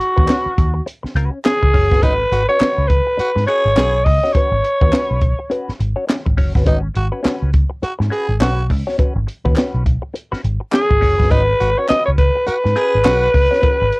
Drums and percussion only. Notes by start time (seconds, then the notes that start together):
0.01 closed hi-hat
0.17 kick
0.28 snare, clap, closed hi-hat
0.58 kick, closed hi-hat
0.87 closed hi-hat
1.05 snare
1.16 closed hi-hat
1.45 snare, clap, closed hi-hat
1.62 kick
1.74 kick, open hi-hat
1.91 kick, snare
2.03 kick, closed hi-hat
2.32 closed hi-hat
2.60 snare, clap, closed hi-hat
2.90 kick, closed hi-hat
3.19 closed hi-hat
3.37 snare
3.48 closed hi-hat
3.77 snare, clap, closed hi-hat
4.06 kick, open hi-hat
4.24 snare
4.35 kick, closed hi-hat
4.65 closed hi-hat
4.82 kick
4.93 snare, clap, closed hi-hat
5.21 kick, closed hi-hat
5.51 closed hi-hat
5.69 snare
5.81 closed hi-hat
6.09 snare, clap, closed hi-hat
6.26 kick
6.38 kick, open hi-hat
6.55 kick, snare
6.66 kick, closed hi-hat
6.95 closed hi-hat
7.25 snare, clap, closed hi-hat
7.53 kick, closed hi-hat
7.83 closed hi-hat
8.01 snare
8.13 closed hi-hat
8.41 snare, clap, closed hi-hat
8.70 kick, open hi-hat
8.89 snare
8.99 kick, closed hi-hat
9.28 closed hi-hat
9.45 kick
9.56 snare, clap, closed hi-hat
9.86 kick, closed hi-hat
10.15 closed hi-hat
10.33 snare
10.44 closed hi-hat
10.72 snare, clap, closed hi-hat
10.91 kick
11.02 kick, open hi-hat
11.20 kick, snare
11.31 kick, closed hi-hat
11.61 closed hi-hat
11.88 snare, clap, closed hi-hat
12.18 kick, closed hi-hat
12.48 closed hi-hat
12.65 snare
12.76 closed hi-hat
13.05 snare, clap, closed hi-hat
13.34 kick, open hi-hat
13.53 snare
13.63 kick, closed hi-hat
13.92 closed hi-hat